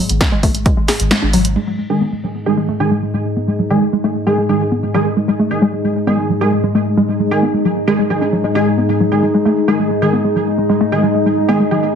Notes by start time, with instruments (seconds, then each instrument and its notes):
Already playing: ambient pad G#2 G#3
0.09 sub bass G#1, closed hi-hat
0.21 synth arpeggio sound G#3, kick, snare, closed hi-hat
0.32 sub bass G#1, synth arpeggio sound G#3
0.43 sub bass G#1, synth arpeggio sound A3, kick, open hi-hat
0.55 sub bass G#1, closed hi-hat
0.66 synth arpeggio sound G#3, kick, closed hi-hat
0.77 sub bass G#1, synth arpeggio sound G#3
0.88 synth arpeggio sound G#4, snare, open hi-hat
1.00 sub bass G#1, closed hi-hat
1.11 synth arpeggio sound G#3, snare, closed hi-hat
1.22 sub bass G#1, synth arpeggio sound D4
1.33 sub bass G#1, synth arpeggio sound F#3, open hi-hat
1.45 sub bass G#1, closed hi-hat
1.56 ambient pad G#2 G#3 D#4, synth arpeggio sound G#3, crash
1.67 synth arpeggio sound G#3
1.79 synth arpeggio sound G#3
1.90 synth stab D#3 G#3 G#4, ambient pad D#5
1.95 ambient pad G#4
2.01 synth arpeggio sound B3
2.12 synth arpeggio sound G#3
2.24 synth arpeggio sound F#3
2.46 synth stab D#3 G#3 G#4, synth arpeggio sound G#3
2.58 synth arpeggio sound G#3
2.69 synth arpeggio sound A3
2.80 synth stab D#3 G#3 G#4
2.91 synth arpeggio sound G#3
3.03 synth arpeggio sound G#3
3.14 synth arpeggio sound G#3
3.37 synth arpeggio sound B3
3.48 synth arpeggio sound G#3
3.59 synth arpeggio sound F#3
3.70 synth stab D#3 G#3 G#4
3.82 synth arpeggio sound G#3
3.93 synth arpeggio sound G#3
4.04 synth arpeggio sound A3
4.27 synth stab D#3 G#3 G#4, synth arpeggio sound G#3
4.38 synth arpeggio sound G#3
4.49 synth stab D#3 G#3 G#4, synth arpeggio sound G#3
4.72 synth arpeggio sound B3
4.83 synth arpeggio sound G#3
4.94 synth stab D#3 G#3 G#4, synth arpeggio sound F#3
5.17 synth arpeggio sound G#3
5.28 synth arpeggio sound G#3
5.39 synth arpeggio sound A3
5.51 synth stab D#3 G#3 G#4
5.62 synth arpeggio sound G#3
5.73 synth arpeggio sound G#3
5.84 synth arpeggio sound G#3
6.07 synth stab D#3 G#3 G#4, synth arpeggio sound B3
6.18 synth arpeggio sound G#3
6.30 synth arpeggio sound F#3
6.41 synth stab D#3 G#3 G#4
6.52 synth arpeggio sound G#3
6.64 synth arpeggio sound G#3
6.75 synth arpeggio sound A3
6.97 synth arpeggio sound G#3
7.09 synth arpeggio sound G#3
7.20 synth arpeggio sound G#3
7.31 synth stab D#3 G#3 G#4
7.42 synth arpeggio sound B3
7.54 synth arpeggio sound G#3
7.65 synth arpeggio sound F#3
7.88 synth stab D#3 G#3 G#4, synth arpeggio sound G#3
7.99 synth arpeggio sound G#3
8.10 synth stab D#3 G#3 G#4, synth arpeggio sound F#3
8.21 synth arpeggio sound D4
8.33 synth arpeggio sound F#3
8.44 synth arpeggio sound G#3
8.55 synth stab D#3 G#3 G#4, synth arpeggio sound G#4
8.78 synth arpeggio sound B3
8.89 synth arpeggio sound G#3
9.00 synth arpeggio sound F#3
9.12 synth stab D#3 G#3 G#4
9.23 synth arpeggio sound G#3
9.34 synth arpeggio sound G#3
9.45 synth arpeggio sound A3
9.68 synth stab D#3 G#3 G#4, synth arpeggio sound G#3
9.79 synth arpeggio sound G#3
9.91 synth arpeggio sound G#3
10.02 synth stab D#3 G#3 G#4
10.13 synth arpeggio sound B3
10.24 synth arpeggio sound G#3
10.36 synth arpeggio sound F#3
10.58 synth arpeggio sound G#3
10.70 synth arpeggio sound G#3
10.81 synth arpeggio sound A3
10.92 synth stab D#3 G#3 G#4
11.03 synth arpeggio sound G#3
11.15 synth arpeggio sound G#3
11.26 synth arpeggio sound G#3
11.48 synth stab D#3 G#3 G#4, synth arpeggio sound B3
11.60 synth arpeggio sound G#3
11.71 synth stab D#3 G#3 G#4, synth arpeggio sound F#3